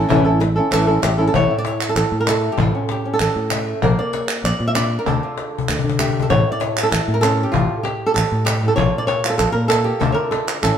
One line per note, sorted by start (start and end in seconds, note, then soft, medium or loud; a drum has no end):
0.09 0.59 A1 loud
0.09 0.24 E3 medium
0.09 0.25 A3 medium
0.09 0.25 C#4 medium
0.09 0.25 E4 medium
0.09 0.23 A4 medium
0.09 cajon bass medium
0.25 0.39 C#4 soft
0.25 0.40 E4 soft
0.25 0.40 A4 medium
0.40 muted nylon-string guitar stroke medium
0.40 cajon slap medium
0.56 0.71 C#4 soft
0.56 0.71 E4 soft
0.56 0.71 A4 medium
0.71 0.97 A1 medium
0.71 0.86 E3 medium
0.71 0.87 A3 medium
0.71 0.87 C#4 medium
0.71 0.87 E4 medium
0.71 0.86 A4 medium
0.71 clap medium
0.87 1.01 C#4 soft
0.87 1.02 E4 medium
0.87 1.02 A4 medium
1.02 1.27 A1 medium
1.02 1.18 G4 medium
1.02 muted nylon-string guitar stroke medium
1.02 cajon slap loud
1.02 clap medium
1.18 1.34 C#4 soft
1.18 1.34 E4 medium
1.18 1.26 A4 medium
1.27 1.35 A4 medium
1.34 1.46 A1 medium
1.34 2.57 A2 medium
1.34 2.26 A3 soft
1.34 1.50 E4 soft
1.34 1.58 C#5 medium
1.34 cajon bass medium
1.51 2.57 E4 soft
1.58 1.66 D5 medium
1.65 1.89 C#5 medium
1.65 cajon slap medium
1.81 clap medium
1.89 1.96 A4 medium
1.96 2.02 A1 medium
1.96 2.20 A4 medium
1.96 clap medium
2.12 2.48 A2 medium
2.20 2.28 A#4 medium
2.27 2.56 A3 medium
2.27 2.83 A4 medium
2.27 cajon slap medium
2.27 clap medium
2.52 2.60 G4 medium
2.58 2.70 A1 medium
2.58 3.83 A2 medium
2.58 2.90 F4 medium
2.58 cajon bass medium
2.58 clap soft
2.74 3.04 C#4 soft
2.74 cajon slap soft
2.89 3.45 G4 medium
2.89 cajon slap medium
3.05 3.81 C#4 soft
3.13 3.20 A4 medium
3.20 3.26 A1 medium
3.20 3.83 A4 medium
3.20 clap medium
3.36 3.72 A2 medium
3.51 3.81 A3 medium
3.51 cajon slap loud
3.51 clap medium
3.82 3.95 A#1 medium
3.82 5.05 A#3 medium
3.82 4.13 A#4 medium
3.82 cajon bass medium
3.99 4.44 D5 medium
4.13 4.75 C#5 medium
4.13 cajon slap medium
4.29 clap medium
4.44 4.50 A#1 medium
4.44 4.67 D5 medium
4.44 clap medium
4.60 4.96 A#2 medium
4.68 4.74 E5 medium
4.75 5.05 D4 medium
4.75 5.06 D5 medium
4.75 cajon slap loud
4.75 clap medium
4.99 5.06 A#4 medium
5.06 5.19 D2 medium
5.06 6.31 D3 medium
5.06 5.68 A4 medium
5.06 cajon bass medium
5.22 6.29 D4 soft
5.22 5.99 F4 soft
5.22 cajon slap soft
5.38 cajon slap medium
5.58 cajon bass medium
5.69 5.75 D2 medium
5.69 cajon slap medium
5.69 clap medium
5.79 cajon bass medium
5.84 6.20 D3 medium
5.89 cajon bass medium
5.99 7.17 A3 medium
5.99 6.30 G4 medium
5.99 cajon bass medium
5.99 clap medium
6.10 cajon bass medium
6.20 6.30 A4 medium
6.20 cajon bass medium
6.30 6.43 A1 medium
6.30 7.53 A2 medium
6.30 6.51 C#5 medium
6.30 cajon bass medium
6.52 6.60 D5 medium
6.60 6.83 C#5 medium
6.60 cajon slap medium
6.77 7.43 E4 soft
6.77 clap medium
6.83 6.90 A4 medium
6.91 6.98 A1 medium
6.91 7.20 A4 medium
6.91 clap medium
7.08 7.44 A2 medium
7.14 7.22 A#4 medium
7.21 7.52 C#4 soft
7.21 7.76 A4 medium
7.21 cajon slap loud
7.21 clap medium
7.43 7.82 G4 medium
7.52 7.66 A1 medium
7.52 8.61 A2 medium
7.52 7.83 F4 medium
7.52 cajon bass medium
7.83 8.38 G4 medium
7.83 cajon slap medium
8.06 8.13 A4 medium
8.14 8.22 A1 medium
8.14 8.67 A4 medium
8.14 clap medium
8.32 8.68 A2 medium
8.45 8.77 G4 medium
8.45 cajon slap loud
8.45 clap medium
8.62 8.77 A2 medium
8.68 8.75 A4 medium
8.76 8.90 A#1 medium
8.76 9.99 A#2 medium
8.76 9.69 A#3 soft
8.76 10.00 D4 soft
8.76 9.23 F4 soft
8.76 8.98 C#5 medium
8.76 cajon bass medium
8.76 clap soft
8.98 9.07 D5 medium
9.07 9.29 C#5 medium
9.07 cajon slap loud
9.24 9.84 F4 soft
9.24 clap medium
9.30 9.37 A4 medium
9.38 9.46 A#1 medium
9.38 9.52 A4 medium
9.38 clap medium
9.52 9.91 A#2 medium
9.52 9.68 A#4 medium
9.68 9.99 A#3 medium
9.68 9.98 A4 medium
9.68 cajon slap loud
9.68 clap medium
9.84 10.01 G4 medium
9.99 10.13 D2 medium
9.99 10.63 D3 medium
9.99 10.61 A3 soft
9.99 10.61 D4 soft
9.99 10.62 F4 soft
9.99 10.12 A4 medium
9.99 cajon bass medium
9.99 clap soft
10.12 10.31 A#4 medium
10.12 10.16 C#5 medium
10.31 10.47 A4 medium
10.31 cajon slap medium
10.47 10.62 A#4 medium
10.47 clap medium
10.63 10.69 A1 medium
10.63 10.78 A2 medium
10.63 10.78 A3 soft
10.63 10.78 C#4 soft
10.63 10.78 E4 soft
10.63 10.78 A4 medium
10.63 clap medium